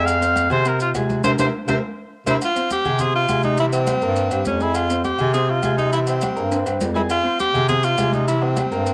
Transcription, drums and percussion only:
0.07 high conga, low agogo, maracas
0.21 high conga, maracas
0.36 high conga, low agogo, maracas
0.50 high conga, low conga, low agogo, maracas
0.65 high conga, low agogo, maracas
0.80 high conga, maracas
0.95 high conga, low timbale, low agogo, maracas
1.09 high conga, low agogo, maracas
1.24 high conga, high timbale, maracas
1.38 high conga, high timbale, maracas
1.68 high conga, high timbale, maracas
2.27 high conga, high timbale, maracas
2.41 high conga, low agogo, maracas
2.56 high conga, maracas
2.70 high conga, low agogo, maracas
2.85 high conga, low conga, low agogo, maracas
2.99 high conga, low conga, low agogo, maracas
3.15 high conga
3.28 high conga, low agogo, maracas
3.43 high conga, low agogo, maracas
3.57 high conga, maracas
3.73 high conga, low agogo, maracas
3.87 high conga, low agogo, maracas
4.02 maracas
4.16 high conga, low agogo, maracas
4.31 high conga, low agogo, maracas
4.45 high conga, maracas
4.60 maracas
4.75 low agogo, maracas
4.90 high conga, maracas
5.04 high conga, low agogo, maracas
5.18 high conga, low conga, low agogo, maracas
5.33 high conga, low agogo, maracas
5.49 high conga
5.63 high conga, low agogo, maracas
5.78 high conga, low agogo, maracas
5.93 high conga, maracas
6.07 high conga, low agogo, maracas
6.21 high conga, low agogo, maracas
6.37 maracas
6.52 high conga, high timbale, low agogo, maracas
6.66 high conga, low agogo, maracas
6.81 high conga, low timbale, maracas
6.96 low timbale, maracas
7.10 high conga, low agogo, maracas
7.25 high conga
7.39 high conga, low agogo, maracas
7.54 high conga, low conga, low agogo, maracas
7.68 high conga, low conga, low agogo, maracas
7.83 high conga, maracas
7.98 high conga, low timbale, low agogo, maracas
8.13 high conga, low agogo, maracas
8.28 maracas
8.41 high conga, low agogo
8.57 high conga, low agogo, maracas
8.72 maracas
8.86 high conga, low agogo, maracas

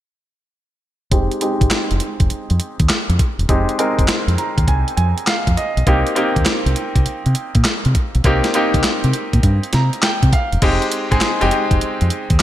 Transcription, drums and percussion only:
1.12 kick, closed hi-hat
1.31 closed hi-hat
1.41 closed hi-hat
1.61 kick, closed hi-hat
1.70 snare, clap, closed hi-hat
1.91 closed hi-hat
2.00 closed hi-hat
2.20 kick, closed hi-hat
2.30 closed hi-hat
2.50 closed hi-hat
2.60 closed hi-hat
2.80 kick, closed hi-hat
2.89 snare, clap, closed hi-hat
3.10 closed hi-hat
3.19 kick, closed hi-hat
3.39 closed hi-hat
3.49 kick, closed hi-hat
3.69 closed hi-hat
3.79 closed hi-hat
3.99 kick, closed hi-hat
4.08 snare, clap, closed hi-hat
4.28 closed hi-hat
4.38 closed hi-hat
4.58 kick, closed hi-hat
4.68 kick, closed hi-hat
4.88 closed hi-hat
4.97 closed hi-hat
5.18 closed hi-hat
5.27 snare, clap, closed hi-hat
5.47 kick, closed hi-hat
5.57 closed hi-hat
5.77 closed hi-hat
5.87 kick, closed hi-hat
6.07 closed hi-hat
6.16 closed hi-hat
6.36 kick, closed hi-hat
6.45 snare, clap, closed hi-hat
6.66 closed hi-hat
6.76 closed hi-hat
6.96 kick, closed hi-hat
7.06 closed hi-hat
7.26 closed hi-hat
7.35 closed hi-hat
7.55 kick, closed hi-hat
7.64 snare, clap, closed hi-hat
7.85 closed hi-hat
7.95 kick, closed hi-hat
8.15 closed hi-hat
8.24 kick, closed hi-hat
8.44 snare, closed hi-hat
8.54 closed hi-hat
8.74 kick, closed hi-hat
8.83 snare, clap, closed hi-hat
9.04 closed hi-hat
9.13 closed hi-hat
9.33 kick, closed hi-hat
9.43 kick, closed hi-hat
9.63 closed hi-hat
9.73 snare, closed hi-hat
9.93 closed hi-hat
10.02 snare, clap, closed hi-hat
10.23 kick, closed hi-hat
10.33 kick, closed hi-hat
10.53 closed hi-hat
10.62 kick, closed hi-hat, crash
10.82 closed hi-hat
10.92 closed hi-hat
11.12 kick, closed hi-hat
11.21 snare, clap, closed hi-hat
11.41 closed hi-hat
11.51 closed hi-hat
11.71 kick, closed hi-hat
11.81 closed hi-hat
12.01 closed hi-hat
12.10 closed hi-hat
12.30 kick, closed hi-hat
12.39 clap

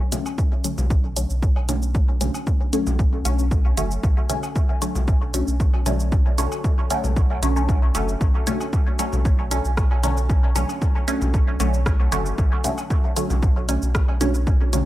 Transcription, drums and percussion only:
0.12 closed hi-hat, low conga, shaker
0.26 low woodblock, shaker
0.38 kick, shaker
0.64 closed hi-hat, shaker
0.78 low conga, shaker
0.90 kick, shaker
1.17 closed hi-hat, shaker
1.30 shaker
1.43 kick, shaker
1.56 low woodblock
1.69 closed hi-hat, low conga, shaker
1.82 shaker
1.95 kick, shaker
2.21 closed hi-hat, low conga, shaker
2.34 low woodblock, shaker
2.47 kick, shaker
2.73 closed hi-hat, shaker
2.87 low conga, shaker
2.99 kick, shaker
3.25 closed hi-hat, shaker
3.39 shaker
3.51 kick, shaker
3.77 closed hi-hat, shaker
3.91 shaker
4.03 kick, shaker
4.30 closed hi-hat, low conga, shaker
4.43 low woodblock, shaker
4.56 kick, shaker
4.82 closed hi-hat, shaker
4.95 low conga, shaker
5.08 kick, shaker
5.34 closed hi-hat, shaker
5.48 shaker
5.60 kick, shaker
5.74 low woodblock
5.86 closed hi-hat, low conga, shaker
6.00 shaker
6.12 kick, shaker
6.38 closed hi-hat, low conga, shaker
6.52 low woodblock, shaker
6.64 kick, shaker
6.90 closed hi-hat, shaker
7.04 low conga, shaker
7.16 kick, shaker
7.43 closed hi-hat, shaker
7.56 shaker
7.69 kick, shaker
7.95 closed hi-hat, shaker
8.08 shaker
8.21 kick, shaker
8.47 closed hi-hat, low conga, shaker
8.61 low woodblock, shaker
8.73 kick, shaker
8.99 closed hi-hat, shaker
9.13 low conga, shaker
9.25 kick, shaker
9.51 closed hi-hat, shaker
9.65 shaker
9.77 kick, cross-stick, shaker
9.91 low woodblock
10.03 closed hi-hat, low conga, shaker
10.17 shaker
10.30 kick, shaker
10.56 closed hi-hat, low conga, shaker
10.69 low woodblock, shaker
10.82 kick, shaker
11.08 closed hi-hat, shaker
11.21 low conga, shaker
11.34 kick, shaker
11.60 closed hi-hat, shaker
11.74 shaker
11.86 kick, cross-stick, shaker
12.12 closed hi-hat, shaker
12.26 shaker
12.38 kick, shaker
12.64 closed hi-hat, low conga, shaker
12.78 low woodblock, shaker
12.90 kick, shaker
13.16 closed hi-hat, shaker
13.30 low conga, shaker
13.43 kick, shaker
13.69 closed hi-hat, shaker
13.82 shaker
13.95 kick, cross-stick, shaker
14.08 low woodblock
14.21 closed hi-hat, low conga, shaker
14.34 shaker
14.47 kick, shaker
14.73 closed hi-hat, low conga, shaker

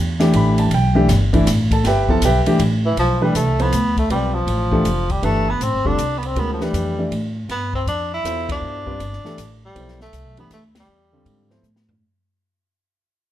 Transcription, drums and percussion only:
0.20 snare, ride
0.33 ride
0.58 ride
0.71 ride
1.09 snare, hi-hat pedal, ride
1.33 kick, ride
1.47 snare, hi-hat pedal, ride
1.71 kick, ride
1.84 snare, ride
2.09 kick
2.22 hi-hat pedal, ride
2.46 ride
2.59 ride
2.97 ride
3.35 hi-hat pedal, ride
3.59 ride
3.72 hi-hat pedal, ride
3.97 kick, ride
4.10 ride
4.48 ride
4.72 kick
4.85 hi-hat pedal, ride
5.09 kick, ride
5.23 ride
5.61 hi-hat pedal, ride
5.85 kick
5.98 hi-hat pedal, ride
6.23 ride
6.36 ride
6.61 snare
6.74 hi-hat pedal, ride
7.12 ride
7.49 snare, ride
7.73 kick
7.87 hi-hat pedal, ride
8.25 hi-hat pedal, ride
8.49 kick, ride
8.87 kick
9.00 hi-hat pedal, ride
9.13 snare
9.25 snare
9.38 hi-hat pedal, ride
9.76 ride
9.88 snare
10.01 snare
10.13 hi-hat pedal, ride
10.37 ride
10.50 snare, hi-hat pedal, ride
10.75 snare, ride
11.26 ride
11.50 snare
11.64 hi-hat pedal
11.76 snare
11.89 floor tom

